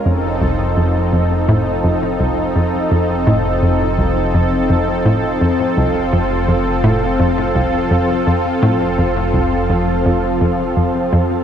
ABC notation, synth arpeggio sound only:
X:1
M:4/4
L:1/8
Q:1/4=84
K:Fphr
V:1 name="Synth arpeggio sound" clef=bass
F,, C,, F,, F,, =A,, F,, C,, F,, | F,, =A,, F,, C,, F,, F,, A,, F,, | C,, F,, F,, =A,, F,, C,, F,, F,, | =A,, F,, C,, F,, F,, F,, F,, F,, |]